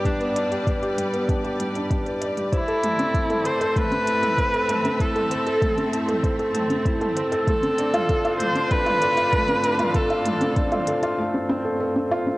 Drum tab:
HH |xxxxxxxxxxxxxxxx|xxxxxxxxxxxxxxxx|xxxxxxxxxxxxxxxx|xxxxxxxxxxxxxxxx|
T2 |----------------|--o--o--o--o--o-|-o--o--o--o--o--|o--o--o--o--o--o|
BD |o---o---o---o---|o---o---o---o---|o---o---o---o---|o---o---o---o---|

HH |xxxxxxxx--------|
T2 |--o--o----------|
BD |o---o-----------|